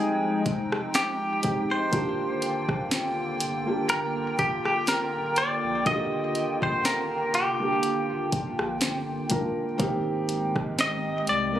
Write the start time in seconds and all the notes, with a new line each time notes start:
Already playing: F3 G3 G#3 C4 D#4 G4 G#4 G5
0.46 F1, kick, closed hi-hat
0.72 cross-stick
0.94 G4, snare, closed hi-hat
1.42 G#3 C4 D#4 G4, kick, closed hi-hat
1.71 C5
1.91 D#1 D3 A#3 D4 F4 G4, kick, closed hi-hat
2.42 closed hi-hat
2.69 kick, cross-stick
2.91 snare, closed hi-hat
3.40 G1, closed hi-hat
3.65 A#3 D4 F4 G4
3.89 G1 A#4, closed hi-hat
4.39 D#1 G4, kick, closed hi-hat
4.65 G4, cross-stick
4.87 D1 A#4, snare, closed hi-hat
5.15 D1
5.36 D5, closed hi-hat
5.64 A#1
5.85 D#1 D3 A#3 F4 F#4 D#5, kick, closed hi-hat
5.94 G4
6.35 closed hi-hat
6.62 C5, kick
6.85 A#4, snare, closed hi-hat
7.34 F1 G4, closed hi-hat
7.59 A#3 D4 F4 G4
7.83 closed hi-hat
8.10 D#1
8.32 G1, kick, closed hi-hat
8.59 A#1, cross-stick
8.81 G1, snare, closed hi-hat
9.29 D#1 A#3 D4 F4 A#4, kick, closed hi-hat
9.78 G#1 G#3 A#3 C4 D#4 G4, kick, closed hi-hat
10.29 closed hi-hat
10.56 kick, cross-stick
10.79 D#5, snare, closed hi-hat
11.27 C2 D5, closed hi-hat
11.52 A#3 B3 D#4 A#4